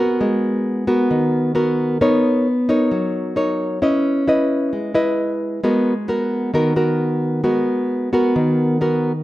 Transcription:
Already playing: B3 F#4 A#4
0.21 G#3
0.87 B3 F#4 A#4
1.11 D#3
1.55 B3 F#4 A#4
2.01 B3 D#4 A#4 C#5
2.69 D#4 A#4 C#5
2.91 F#3
3.36 D#4 A#4 C#5
3.82 C#4 E4 B4 D#5
4.28 E4 B4 D#5
4.73 G#3
4.94 E4 B4 D#5
5.64 G#3 B3 F#4 A#4
6.08 B3 F#4 A#4
6.54 D#3 B3 F#4 A#4
6.76 B3 F#4 A#4
7.44 G#3 B3 F#4 A#4
8.13 B3 F#4 A#4
8.36 D#3
8.81 B3 F#4 A#4

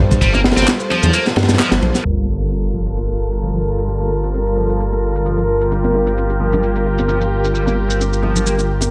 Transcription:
Already playing: G2 G3 F4 A4 C5
0.11 kick, ride, high bongo, shaker
0.21 G1 G3, kick, ride, shaker
0.34 A#3, ride, high bongo, high conga, shaker
0.44 snare, ride
0.51 snare, ride
0.56 G1 C4, snare, ride, shaker
0.62 snare, ride
0.67 snare, clap, ride, high bongo, shaker
0.80 shaker
0.90 F3, ride, high bongo, high conga
1.03 E2, low conga, shaker
1.13 A#3, ride, shaker
1.26 snare, high bongo, shaker
1.36 G2, snare, ride
1.43 snare, ride
1.48 G2, snare, ride, high bongo, high conga, shaker
1.54 snare, ride
1.59 F3, snare, clap, ride, shaker
1.71 G1, snare, ride, shaker
1.82 A#1, ride, high bongo, low conga
1.95 snare, shaker
2.04 G1 G3 F4 A4 A#4, sub drop, shaker
2.17 A#3
2.40 C4, shaker
2.51 shaker
2.64 shaker
2.74 F3
2.86 shaker
2.97 A#3, shaker
3.09 shaker
3.32 shaker
3.43 F3, shaker
3.55 shaker
3.78 shaker
3.88 G3, shaker
4.01 A#3, shaker
4.24 C4, shaker
4.34 shaker
4.47 shaker
4.57 F3
4.70 shaker
4.80 A#3, shaker
4.93 shaker
5.15 shaker
5.26 F3, shaker
5.38 shaker
5.61 shaker
5.71 G3 G4, high bongo, shaker
5.84 A#3, high conga, shaker
5.95 high bongo
6.07 C4, shaker
6.17 shaker
6.30 high bongo, shaker
6.40 F3, high conga
6.52 high bongo, low conga, shaker
6.63 A#3, shaker
6.75 shaker
6.86 high bongo
6.98 high conga, shaker
7.08 F3, high bongo, shaker
7.21 shaker
7.44 high bongo, shaker
7.54 G3, shaker
7.67 A#3, high bongo, high conga, shaker
7.89 C4, shaker
8.00 high bongo, shaker
8.13 shaker
8.23 F3, high bongo, high conga
8.36 low conga, shaker
8.46 A#3, shaker
8.58 high bongo, shaker
8.81 high bongo, high conga, shaker

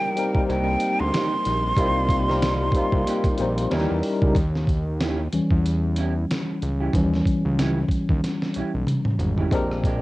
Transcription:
Already playing: C3 G3 A#3 C4 D#4 A#4 G5
0.16 G3 A#3 C4 D#4 A#4, closed hi-hat
0.34 G3 A#3 C4 D#4 A#4, kick
0.44 C5
0.49 C2 A#3 D#4 G4 G5, closed hi-hat
0.80 closed hi-hat
1.00 D2 C6
1.13 A#3 D#4 G4, snare, closed hi-hat
1.45 A#1, closed hi-hat
1.77 C2 G3 A#3 C4 D#4 F4, kick, closed hi-hat
2.09 kick, closed hi-hat
2.28 G3 A#3 C4 D#4 A#4, snare
2.42 snare, closed hi-hat
2.72 C2 G3 A#3, kick, closed hi-hat
2.76 C4 D#4 F4
2.92 C2, kick
3.06 A#3 D#4 G4, closed hi-hat
3.24 kick, closed hi-hat
3.38 A#1 G3 A#3 C4 D#4 C5, closed hi-hat
3.58 closed hi-hat
3.71 D#2 D#3 E3 G3 C#4 D#4 E4 G4 A#4, snare, closed hi-hat
3.91 E2
4.03 open hi-hat
4.22 C#2, kick
4.35 D#2, kick, closed hi-hat
4.55 snare
4.67 kick, closed hi-hat
5.00 C#4 E4 G4, snare, closed hi-hat
5.33 E2 E3 G3 C#4, closed hi-hat
5.51 E2, kick
5.66 closed hi-hat
5.96 C#4 E4 G4, closed hi-hat
6.30 snare, closed hi-hat
6.62 C#2, closed hi-hat
6.80 C#4 E4 G4
6.93 D#2 E3 G3 C#4, kick, closed hi-hat
7.13 snare
7.25 kick, closed hi-hat
7.45 C#2
7.59 C#4 E4 G4, snare, closed hi-hat
7.88 D#2, kick, closed hi-hat
8.09 D#2, kick
8.24 snare, closed hi-hat
8.42 snare
8.54 B1 C#4 E4 G4, closed hi-hat
8.74 B1
8.87 closed hi-hat, mid tom
9.05 mid tom
9.19 G#1, closed hi-hat, floor tom
9.38 C#4 E4 G4, floor tom
9.51 A#1 G#3 C4 D4 G4 A#4, kick, closed hi-hat
9.71 cross-stick
9.84 G#3 D4 G4, kick, closed hi-hat

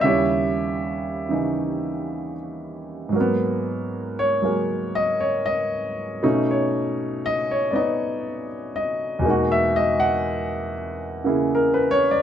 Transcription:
0.01 D#2 C#3 G3 E4 E5
0.05 G4 C#5
1.29 C#3 E3 D#4
3.09 G#2 F#3
3.16 A#3
3.20 B3
4.19 C#5
4.42 F#3 G#3 A#3
4.95 D#5
5.20 C#5
5.46 D#5
6.23 B2 A3 C#4 D#4
6.51 C#5
7.26 D#5
7.51 C#5
7.71 B3 D5
7.75 D#4 D#5
8.76 D#5
9.19 E2 B2
9.23 G#3 A#3
9.28 D#4 F#4
9.52 E5
9.76 D#5
10.00 F#5
11.24 C#3 A#3 E4 G#4
11.55 A#4
11.74 B4
11.91 C#5
12.11 D5

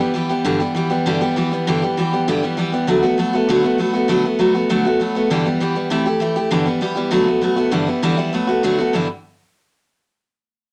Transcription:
0.00 E3 G3 B3 G4
0.14 E3 G3 B3 G4
0.29 E3 G3 B3 G4
0.45 G2 D3 E3 G3 B3 G4
0.60 E3 G3 B3 G4
0.75 E3 G3 B3 G4
0.90 E3 G3 B3 G4
1.06 G2 D3 E3 G3 B3 G4
1.21 E3 G3 B3 G4
1.36 E3 G3 B3 G4
1.52 E3 G3 B3 G4
1.67 G2 D3 E3 G3 B3 G4
1.82 E3 G3 B3 G4
1.97 E3 G3 B3 G4
2.13 E3 G3 B3 G4
2.28 G2 D3 E3 G3 B3 G4
2.43 E3 G3 B3 G4
2.57 E3 G3 B3 G4
2.72 E3 G3 B3 G4
2.87 D3 F#3 A3 B3 F#4
3.03 A3 B3 F#4
3.18 F#3 A3 B3 F#4
3.33 A3 B3 F#4
3.49 D3 F#3 A3 B3 F#4
3.63 A3 B3 F#4
3.78 F#3 A3 B3 F#4
3.93 A3 B3 F#4
4.08 D3 F#3 A3 B3 F#4
4.24 A3 B3 F#4
4.39 F#3 A3 B3 F#4
4.55 A3 B3 F#4
4.69 D3 F#3 A3 B3 F#4
4.85 A3 B3 F#4
5.00 F#3 A3 B3 F#4
5.15 A3 B3 F#4
5.30 G2 D3 E3 G3 B3 G4
5.45 E3 G3 B3 G4
5.60 E3 G3 B3 G4
5.75 E3 G3 B3 G4
5.90 C3 E3 A3 E4 G4
6.06 A3 E4 G4
6.20 E3 A3 E4 G4
6.36 A3 E4 G4
6.51 G2 D3 E3 G3 B3 G4
6.66 E3 G3 B3 G4
6.81 E3 G3 B3 G4
6.96 E3 G3 B3 G4
7.11 D3 F#3 A3 B3 F#4
7.26 A3 B3 F#4
7.41 F#3 A3 B3 F#4
7.56 A3 B3 F#4
7.71 G2 D3 E3 G3 B3 E4
7.87 E3 G3 B3 E4
8.02 G2 D3 E3 G3 B3 E4
8.17 E3 G3 B3 E4
8.33 F#3 A3 B3 F#4
8.47 A3 B3 F#4
8.63 D3 F#3 A3 B3 F#4
8.78 A3 B3 F#4
8.93 G2 D3 E3 G3 B3 E4

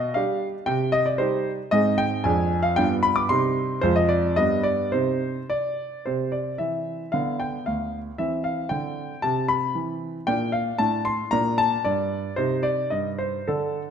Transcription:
Already playing: B2 D#5
0.14 G3 D4 G4 F5
0.66 C3 G5
0.92 D#5
1.06 D5
1.18 G3 D#4 G4 C5
1.71 G#2 C4 D#4 G#4 D#5
1.98 G5
2.24 F2 C4 D4 G#4 G#5
2.63 F5
2.76 G2 B3 D4 F4 G5
3.03 B5
3.16 D6
3.29 C3 G3 C4 D#4 C6
3.81 F2 G#3 C4 F4 C5
3.96 D#5
4.09 D5
4.36 G2 G3 B3 D4 D#5
4.63 D5
4.92 C3 C4 D#4 C5
5.50 D5
6.06 C3 C4 C5
6.32 D5
6.58 E3 E5
7.12 D3 B3 F5
7.40 G5
7.66 D2 F5
8.18 E3 C4 E5
8.44 F5
8.69 D3 G5
9.22 C3 C4 A5
9.48 B5
9.75 E3
10.27 A#2 D4 G5
10.52 F5
10.78 A2 D4 A5
11.05 C6
11.31 A#2 D4 A#5
11.58 A5
11.84 G2 D5
12.36 C3 D#4 C5
12.63 D5
12.90 G2 D#5
13.18 C5
13.47 D3 D4 A4

